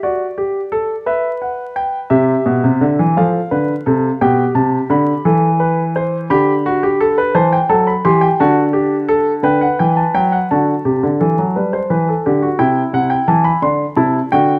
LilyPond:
<<
  \new Staff \with { instrumentName = "Grand piano" } { \time 6/8 \key c \major \tempo 4. = 57 << { d''4. e''8 fis''8 g''8 | e''4. f''4. | g''8 a''8 b''2 | b''4. a''16 g''16 a''16 b''16 c'''16 g''16 |
a''4. g''16 fis''16 g''16 a''16 g''16 fis''16 | a''2. | g''8 fis''16 g''16 a''16 b''16 c'''8 a''8 g''8 | } \\ { fis'8 g'8 a'8 b'4. | g'4. a'8 b'8 a'8 | g'4. a'8 b'8 c''8 | g'8 fis'16 g'16 a'16 b'16 c''8 a'8 g'8 |
fis'8 g'8 a'8 b'4. | fis'8 g'8 a'8 b'16 c''16 b'16 a'16 g'16 fis'16 | e'4. d'8 e'8 fis'8 | } >> }
  \new Staff \with { instrumentName = "Grand piano" } { \clef bass \time 6/8 \key c \major r2. | c8 b,16 c16 d16 e16 f8 d8 c8 | b,8 c8 d8 e4. | d4. e8 fis8 e8 |
d4. d8 e8 fis8 | d8 c16 d16 e16 fis16 g8 e8 d8 | c8 c8 e8 d8 c8 d8 | }
>>